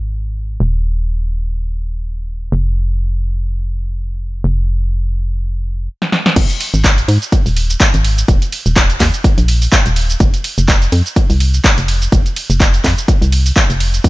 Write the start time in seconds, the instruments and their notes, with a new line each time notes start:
Already playing: fm bass G#1
0.60 fm bass D#1
2.52 fm bass F1
4.44 fm bass F1
6.02 snare
6.12 snare
6.26 snare
6.36 fm bass G#1, kick, closed hi-hat, crash, shaker
6.50 closed hi-hat, shaker
6.60 open hi-hat, ride
6.74 fm bass G#1, closed hi-hat, shaker
6.84 kick, clap, closed hi-hat, shaker
6.98 closed hi-hat, shaker
7.08 fm bass G#2, open hi-hat, ride
7.22 closed hi-hat, shaker
7.32 kick, closed hi-hat, shaker
7.46 fm bass D#1, open hi-hat, shaker
7.57 open hi-hat, ride
7.70 closed hi-hat, shaker
7.80 kick, clap, closed hi-hat, shaker
7.94 fm bass G#1, closed hi-hat, shaker
8.04 open hi-hat, ride
8.18 closed hi-hat, shaker
8.28 fm bass D#1, kick, closed hi-hat, shaker
8.42 closed hi-hat, shaker
8.52 open hi-hat, ride
8.66 fm bass D#1, closed hi-hat, shaker
8.76 kick, clap, closed hi-hat, shaker
8.90 closed hi-hat, shaker
9.00 fm bass D#2, kick, clap, open hi-hat, ride
9.14 closed hi-hat, shaker
9.24 kick, closed hi-hat, shaker
9.38 fm bass A#1, closed hi-hat, shaker
9.48 open hi-hat, ride
9.62 open hi-hat, shaker
9.72 kick, clap, closed hi-hat, shaker
9.86 fm bass D#1, closed hi-hat, shaker
9.96 open hi-hat, ride
10.10 closed hi-hat, shaker
10.20 fm bass F1, kick, closed hi-hat, shaker
10.34 closed hi-hat, shaker
10.44 open hi-hat, ride
10.58 fm bass F1, closed hi-hat, shaker
10.68 kick, clap, closed hi-hat, shaker
10.82 closed hi-hat, shaker
10.92 fm bass F2, open hi-hat, ride
11.06 closed hi-hat, shaker
11.16 kick, closed hi-hat, shaker
11.30 fm bass C2, open hi-hat, shaker
11.40 open hi-hat, ride
11.54 closed hi-hat, shaker
11.64 kick, clap, closed hi-hat, shaker
11.78 fm bass F1, closed hi-hat, shaker
11.88 open hi-hat, ride
12.02 closed hi-hat, shaker
12.12 fm bass F1, kick, closed hi-hat, shaker
12.26 closed hi-hat, shaker
12.36 open hi-hat, ride
12.50 fm bass F1, closed hi-hat, shaker
12.60 kick, clap, closed hi-hat, shaker
12.74 closed hi-hat, shaker
12.84 fm bass F2, kick, clap, open hi-hat, ride
12.98 closed hi-hat, shaker
13.08 kick, closed hi-hat, shaker
13.22 fm bass C2, closed hi-hat, shaker
13.32 open hi-hat, ride
13.46 open hi-hat, shaker
13.56 kick, clap, closed hi-hat, shaker
13.70 fm bass F1, closed hi-hat, shaker
13.80 open hi-hat, ride
13.94 closed hi-hat, shaker
14.04 fm bass G#1, kick, closed hi-hat, shaker